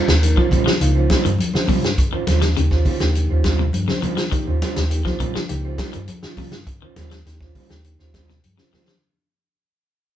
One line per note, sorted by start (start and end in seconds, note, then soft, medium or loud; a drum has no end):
0.00 0.10 G3 medium
0.00 0.11 C#4 medium
0.00 0.11 F4 medium
0.00 0.11 C5 medium
0.08 0.33 D#2 medium
0.08 snare medium
0.08 closed hi-hat medium
0.23 0.44 F3 medium
0.23 0.44 A#3 medium
0.23 0.45 D#4 medium
0.23 0.44 A#4 medium
0.23 closed hi-hat medium
0.36 0.46 F3 medium
0.36 0.50 C#4 soft
0.36 0.51 F4 medium
0.36 0.51 C5 medium
0.36 kick medium
0.36 high conga medium
0.51 0.65 A#1 medium
0.51 0.69 G3 medium
0.51 0.69 C#4 medium
0.51 0.70 F4 medium
0.51 0.70 C5 medium
0.51 kick medium
0.51 closed hi-hat medium
0.51 low conga medium
0.66 0.84 F3 medium
0.66 snare medium
0.81 1.07 C#2 medium
0.81 1.25 F3 medium
0.81 1.24 A#3 medium
0.81 1.24 D#4 medium
0.81 1.25 F4 loud
0.81 closed hi-hat medium
0.95 1.09 C#4 soft
0.95 1.10 F4 soft
0.95 1.10 C5 medium
1.10 1.28 G3 medium
1.10 1.28 C#4 medium
1.10 1.28 F4 medium
1.10 1.29 C5 medium
1.10 kick medium
1.10 snare medium
1.10 closed hi-hat medium
1.10 high conga medium
1.10 low conga medium
1.25 1.38 G2 medium
1.25 1.42 D#3 medium
1.25 closed hi-hat medium
1.39 closed hi-hat medium
1.39 high conga medium
1.53 1.83 D#3 medium
1.53 1.68 C#4 soft
1.53 1.69 C5 medium
1.53 muted clean electric guitar stroke medium
1.53 snare medium
1.53 high conga medium
1.68 1.86 C3 medium
1.68 1.86 G3 medium
1.68 1.87 C#4 medium
1.68 1.87 F4 medium
1.68 1.87 C5 medium
1.68 kick medium
1.68 open hi-hat medium
1.68 high conga medium
1.68 low conga medium
1.83 2.09 G2 medium
1.83 snare medium
1.83 closed hi-hat medium
1.98 kick medium
1.98 closed hi-hat medium
2.12 2.30 D#3 medium
2.12 2.26 C#4 soft
2.12 2.26 F4 medium
2.12 2.26 C5 medium
2.12 muted fingered electric bass stroke soft
2.27 2.54 D#2 medium
2.27 2.45 G3 medium
2.27 2.45 C#4 medium
2.27 2.45 F4 medium
2.27 2.45 C5 medium
2.27 snare soft
2.27 closed hi-hat medium
2.27 high conga loud
2.27 low conga medium
2.42 2.50 F3 medium
2.42 snare medium
2.42 closed hi-hat medium
2.57 2.83 D#2 medium
2.57 2.74 C#3 medium
2.57 2.68 F3 medium
2.57 2.68 A#3 medium
2.57 2.68 D#4 medium
2.57 2.68 G4 medium
2.57 closed hi-hat medium
2.71 2.85 C#4 soft
2.71 2.86 F4 medium
2.71 2.86 C5 medium
2.71 kick medium
2.71 snare soft
2.85 3.04 C#4 medium
2.85 2.91 D#4 medium
2.85 3.04 F4 medium
2.85 2.91 G4 medium
2.85 3.04 C5 medium
2.85 muted clean electric guitar stroke medium
2.85 kick medium
2.85 open hi-hat medium
2.85 low conga medium
3.00 3.27 D#2 medium
3.00 3.44 F3 medium
3.00 3.44 A#3 medium
3.00 3.44 D#4 medium
3.00 3.44 G4 loud
3.00 snare medium
3.00 closed hi-hat medium
3.15 closed hi-hat medium
3.30 3.69 D#2 medium
3.30 3.44 C#4 soft
3.30 3.44 F4 medium
3.30 3.45 C5 medium
3.44 3.63 G3 medium
3.44 3.63 C#4 medium
3.44 3.63 F4 medium
3.44 3.63 C5 medium
3.44 kick medium
3.44 snare medium
3.44 closed hi-hat medium
3.44 high conga loud
3.44 low conga medium
3.59 3.77 C3 medium
3.73 3.87 G2 medium
3.73 closed hi-hat medium
3.73 high conga medium
3.88 3.97 C#3 medium
3.88 4.02 C#4 medium
3.88 4.03 C5 medium
3.88 muted fingered electric bass stroke soft
3.88 snare medium
3.88 high conga medium
4.02 4.11 D#3 medium
4.02 4.42 D#3 medium
4.02 4.21 G3 medium
4.02 4.21 C#4 medium
4.02 4.21 F4 medium
4.02 4.21 C5 medium
4.02 closed hi-hat medium
4.02 high conga medium
4.02 low conga medium
4.17 4.26 F3 medium
4.17 snare medium
4.17 closed hi-hat medium
4.31 4.49 D#3 medium
4.31 4.54 F3 medium
4.31 4.54 A#3 medium
4.31 4.55 D#4 medium
4.31 4.54 G4 loud
4.31 kick loud
4.31 closed hi-hat medium
4.47 4.61 D#2 medium
4.47 4.61 C#4 medium
4.47 4.61 F4 medium
4.47 4.62 C5 medium
4.61 4.79 G3 medium
4.61 4.80 C#4 medium
4.61 4.80 F4 medium
4.61 4.80 C5 medium
4.61 snare soft
4.61 closed hi-hat medium
4.61 high conga loud
4.76 5.03 D#2 medium
4.76 snare medium
4.76 closed hi-hat medium
4.90 5.13 F3 medium
4.90 5.13 A#3 medium
4.90 5.13 D#4 medium
4.90 5.13 G4 medium
4.90 closed hi-hat medium
5.05 5.14 F3 medium
5.05 5.19 C#4 soft
5.05 5.20 F4 medium
5.05 5.20 C5 medium
5.05 kick medium
5.05 snare soft
5.05 high conga medium
5.20 5.33 A#1 loud
5.20 5.29 D#3 medium
5.20 5.38 G3 medium
5.20 5.38 C#4 medium
5.20 5.38 F4 medium
5.20 5.39 C5 medium
5.20 kick medium
5.20 closed hi-hat medium
5.20 low conga medium
5.35 5.53 F3 medium
5.35 snare medium
5.49 5.76 C#2 loud
5.49 5.93 F3 medium
5.49 5.93 A#3 medium
5.49 5.93 D#4 medium
5.49 5.93 G4 loud
5.49 closed hi-hat medium
5.65 5.78 C#4 soft
5.65 5.78 F4 medium
5.65 5.79 C5 medium
5.78 5.97 G3 medium
5.78 5.97 C#4 medium
5.78 5.97 F4 medium
5.78 5.97 C5 medium
5.78 kick medium
5.78 snare medium
5.78 closed hi-hat medium
5.78 high conga medium
5.93 6.08 G2 medium
5.93 6.11 D#3 medium
5.93 closed hi-hat medium
6.08 closed hi-hat medium
6.08 high conga medium
6.23 6.54 D#3 medium
6.23 6.37 C#4 medium
6.23 6.38 F4 medium
6.23 snare medium
6.37 6.56 C3 medium
6.37 6.56 G3 medium
6.37 6.56 C#4 medium
6.37 6.56 F4 medium
6.37 kick medium
6.37 open hi-hat medium
6.37 high conga medium
6.37 low conga medium
6.52 6.79 G2 medium
6.52 snare medium
6.52 closed hi-hat medium
6.67 kick medium
6.67 closed hi-hat medium
6.82 7.00 D#3 medium
6.82 6.95 C#4 soft
6.82 6.96 F4 medium
6.82 6.96 C5 medium
6.82 muted fingered electric bass stroke soft
6.96 7.23 D#2 medium
6.96 7.14 G3 medium
6.96 7.14 C#4 medium
6.96 7.15 F4 medium
6.96 7.15 C5 medium
6.96 snare soft
6.96 closed hi-hat medium
6.96 high conga medium
6.96 low conga medium
7.11 7.20 F3 medium
7.11 snare medium
7.11 closed hi-hat medium
7.26 7.52 D#2 loud
7.26 7.37 F3 medium
7.26 7.37 A#3 medium
7.26 7.37 D#4 medium
7.26 7.37 G4 medium
7.26 snare soft
7.26 closed hi-hat medium
7.41 7.55 C#4 soft
7.41 7.55 F4 soft
7.41 7.56 C5 medium
7.41 kick medium
7.41 snare soft
7.55 7.73 G3 medium
7.55 7.73 C#4 medium
7.55 7.61 D#4 medium
7.55 7.74 F4 medium
7.55 7.61 G4 medium
7.55 7.74 C5 medium
7.55 kick medium
7.55 open hi-hat medium
7.55 low conga medium
7.70 7.96 D#2 medium
7.70 8.13 F3 medium
7.70 8.13 A#3 medium
7.70 8.13 D#4 medium
7.70 8.13 G4 loud
7.70 snare medium
7.70 closed hi-hat medium
7.84 closed hi-hat medium
7.99 8.38 D#2 medium
7.99 8.12 C#4 medium
7.99 8.13 F4 medium
7.99 8.13 C5 medium
7.99 snare soft
8.13 8.31 G3 medium
8.13 8.32 C#4 medium
8.13 8.32 F4 medium
8.13 8.32 C5 medium
8.13 kick medium
8.13 snare medium
8.13 closed hi-hat medium
8.13 high conga medium
8.13 low conga medium
8.29 8.47 C3 medium
8.29 snare soft
8.44 8.57 G2 medium
8.44 closed hi-hat medium
8.44 high conga medium
8.57 8.66 C#3 medium
8.57 8.72 C#4 medium
8.57 8.72 F4 medium
8.57 8.73 C5 medium
8.57 snare medium
8.73 8.82 D#3 medium
8.73 8.99 D#3 medium
8.73 8.91 G3 medium
8.73 8.91 C#4 medium
8.73 8.91 F4 medium
8.73 8.91 C5 medium
8.73 snare medium
8.73 high conga medium
8.73 low conga medium
8.88 8.97 F3 medium
8.88 snare medium